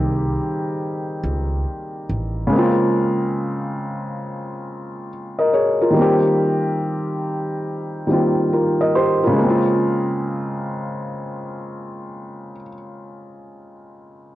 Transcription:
Already playing: C2 D#3 G3 A#3 C4 D#4 G4 G#4
1.24 C#2
2.09 A1
2.47 C#3 G#3
2.53 A#3 C4
2.58 F4
5.39 A#4 D#5
5.53 G#4 C#5
5.82 F4 A#4
5.90 D#3 G3
5.96 A#3 C4
6.02 G4
8.07 D#3 G3 A#3
8.11 C4 F4
8.53 F4 A#4
8.81 A#4 D#5
8.95 G4 C5
9.23 C#3 F4 A#4
9.33 G#3
9.38 A#3
9.44 C4
9.50 F4

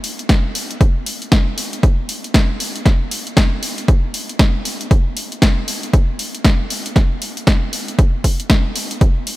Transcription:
0.04 open hi-hat
0.19 closed hi-hat
0.29 kick, snare, closed hi-hat
0.55 open hi-hat
0.71 closed hi-hat
0.81 kick, closed hi-hat
1.06 open hi-hat
1.22 closed hi-hat
1.32 kick, snare, closed hi-hat
1.58 open hi-hat
1.73 closed hi-hat
1.83 kick, closed hi-hat
2.09 open hi-hat
2.24 closed hi-hat
2.34 kick, snare, closed hi-hat
2.60 open hi-hat
2.76 closed hi-hat
2.85 kick, snare, closed hi-hat
3.11 open hi-hat
3.27 closed hi-hat
3.37 kick, snare, closed hi-hat
3.63 open hi-hat
3.78 closed hi-hat
3.88 kick, closed hi-hat
4.14 open hi-hat
4.29 closed hi-hat
4.39 kick, snare, closed hi-hat
4.65 open hi-hat
4.81 closed hi-hat
4.91 kick, closed hi-hat
5.17 open hi-hat
5.32 closed hi-hat
5.42 kick, snare, closed hi-hat
5.68 open hi-hat
5.83 closed hi-hat
5.93 kick, closed hi-hat
6.19 open hi-hat
6.35 closed hi-hat
6.45 kick, snare, closed hi-hat
6.70 open hi-hat
6.86 closed hi-hat
6.96 kick, snare, closed hi-hat
7.22 open hi-hat
7.37 closed hi-hat
7.47 kick, snare, closed hi-hat
7.73 open hi-hat
7.88 closed hi-hat
7.99 kick, closed hi-hat
8.24 kick, open hi-hat
8.40 closed hi-hat
8.50 kick, snare, closed hi-hat
8.76 open hi-hat
8.91 closed hi-hat
9.01 kick, closed hi-hat
9.27 open hi-hat

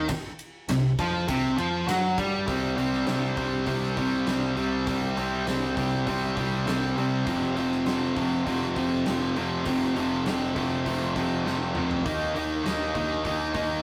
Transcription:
0.09 muted picked electric bass stroke, muted distorted electric guitar stroke, muted overdriven electric guitar stroke, kick, ride
0.39 ride
0.68 C2 C3, snare, ride
0.99 F2 F3, kick, ride
1.28 C2 C3, kick, ride
1.57 F2 F3, ride
1.87 F#2 F#3, snare, ride
2.18 G2 G3, kick, ride
2.46 C2 C3 G3 C4, kick, open hi-hat
2.76 C2 C3 G3 C4, open hi-hat
2.93 snare
3.06 C2 C3 G3 C4, snare, open hi-hat
3.36 C2 C3 G3 C4, kick, open hi-hat
3.66 C2 C3 G3 C4, kick, open hi-hat
3.96 C3 G3 C4, kick, open hi-hat
4.26 C2 C3 G3 C4, snare, open hi-hat
4.55 C2 C3 G3 C4, open hi-hat
4.87 C2 C3 G3 C4, kick, open hi-hat
5.16 C2 C3 G3 C4, open hi-hat
5.46 C2 C3 G3 C4, snare, open hi-hat
5.75 C2 C3 G3 C4, kick, open hi-hat
6.06 C2 C3 G3 C4, kick, open hi-hat
6.36 C3 G3 C4, kick, open hi-hat
6.65 C2 C3 G3 C4, snare, open hi-hat
6.96 C2 C3 G3 C4, open hi-hat
7.25 F1 F2 C3 F3, kick, open hi-hat
7.55 F1 F2 C3 F3, open hi-hat
7.72 snare
7.85 F1 F2 C3 F3, snare, open hi-hat
8.16 F1 F2 C3 F3, kick, open hi-hat
8.45 F1 F2 C3 F3, kick, open hi-hat
8.76 F2 C3 F3, kick, open hi-hat
9.05 F1 F2 C3 F3, snare, open hi-hat
9.35 F1 F2 C3 F3, open hi-hat
9.64 F1 F2 C3 F3, kick, open hi-hat
9.94 F1 F2 C3 F3, open hi-hat
10.25 F1 F2 C3 F3, snare, open hi-hat
10.53 F1 F2 C3 F3, kick, open hi-hat
10.85 F1 F2 C3 F3, kick, open hi-hat
11.15 F2 C3 F3, kick, open hi-hat
11.45 F1 F2 C3 F3, snare
11.74 F1 F2 C3 F3, mid tom
11.91 floor tom
12.04 D#2 D#3 A#3 D#4, kick, open hi-hat
12.34 D#2 D#3 A#3 D#4, open hi-hat
12.64 D#2 D#3 A#3 D#4, snare, open hi-hat
12.94 D#2 D#3 A#3 D#4, kick, open hi-hat
13.23 D#2 D#3 A#3 D#4, kick, open hi-hat
13.53 D#3 A#3 D#4, kick, open hi-hat

